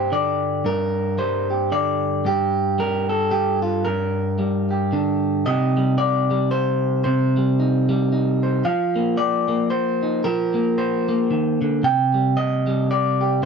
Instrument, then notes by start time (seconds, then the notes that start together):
clean electric guitar
Already playing: G2 G3 D4 G4 C5
0.12 D3 D5
0.65 G2 A#4
1.18 G3 C5
1.50 G4
1.72 D3 D5
2.25 G2 G4
2.79 G3 A#4
3.09 A4
3.31 G2 G4
3.62 F4
3.85 G2 A#4
4.39 G3
4.71 G4
4.92 D3 D4
5.46 C3 G3 D#4 G4 D#5
5.77 G3
5.98 D5
6.31 G3
6.51 C5
7.04 C3 C5
7.37 G3
7.60 D#4
7.89 G3
8.12 D#4
8.43 C5
8.65 F3 F5
8.96 A#3
9.17 D5
9.48 A#3
9.70 C5
10.03 D#4
10.24 F3 A#4
10.54 A#3
10.78 C5
11.09 A#3
11.31 D#3
11.61 D3
11.83 C3 G5
12.14 G3
12.37 D#5
12.67 G3
12.91 D5
13.21 G4